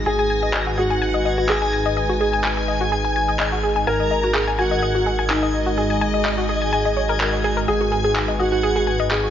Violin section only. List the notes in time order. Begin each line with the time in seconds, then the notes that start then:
0.06 G#5
0.77 F#5
1.49 G#5
3.87 A#5
4.59 F#5
5.30 D#5
7.68 G#5
8.40 F#5
9.11 G#5